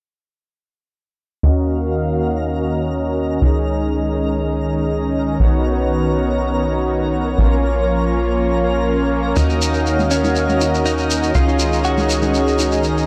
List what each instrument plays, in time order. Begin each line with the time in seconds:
1.43 analog synth bass D#2, analog synth pad D#3 A#3 C#4 F#4 F5, supersaw synth C#4 F#4 A#4 D#5, synth texture A#4 A#5
3.42 analog synth bass C#2, analog synth pad D#3 G#3, supersaw synth C#4 D#4 G#4 D#5
5.40 analog synth bass B1, analog synth pad B3 C#4, supersaw synth B3 D#4 F#4 C#5
7.38 analog synth bass A#1, analog synth pad F3 A#3 C#4, supersaw synth A#3 C#4 F4 C#5
9.36 analog synth bass D#2, analog synth pad D#3 F#4 F5, supersaw synth C#4 F#4 A#4 D#5, clean electric guitar D#4, shekere
9.50 shekere
9.61 shekere
9.74 shekere
9.86 shekere
9.99 low conga, shekere
10.11 clean electric guitar C#4, shekere
10.24 high conga, low conga, shekere
10.35 shekere
10.49 low conga, shekere
10.61 high conga, shekere
10.75 shekere
10.86 clean electric guitar D#4, shekere
10.98 shekere
11.10 shekere
11.23 shekere
11.35 analog synth bass C#2, analog synth pad D#3 G#3, supersaw synth C#4 D#4 G#4 D#5, clean electric guitar F4, shekere
11.48 high conga, shekere
11.59 shekere
11.73 shekere
11.84 clean electric guitar F#4, shekere
11.98 low conga, shekere
12.09 shekere
12.22 high conga, low conga, shekere
12.34 shekere
12.48 shekere
12.59 high conga, shekere
12.72 shekere
12.84 shekere
12.97 shekere